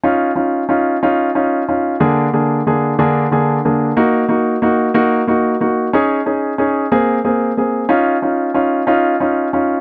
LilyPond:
\new Staff \with { instrumentName = "Grand piano" } { \time 6/8 \key des \major \tempo 4. = 61 <des' ees' f'>8 <des' ees' f'>8 <des' ees' f'>8 <des' ees' f'>8 <des' ees' f'>8 <des' ees' f'>8 | <d bes d' aes'>8 <d bes d' aes'>8 <d bes d' aes'>8 <d bes d' aes'>8 <d bes d' aes'>8 <d bes d' aes'>8 | <bes ees' ges'>8 <bes ees' ges'>8 <bes ees' ges'>8 <bes ees' ges'>8 <bes ees' ges'>8 <bes ees' ges'>8 | <des' ees' aes'>8 <des' ees' aes'>8 <des' ees' aes'>8 <bes c' aes'>8 <bes c' aes'>8 <bes c' aes'>8 |
<des' ees' f'>8 <des' ees' f'>8 <des' ees' f'>8 <des' ees' f'>8 <des' ees' f'>8 <des' ees' f'>8 | }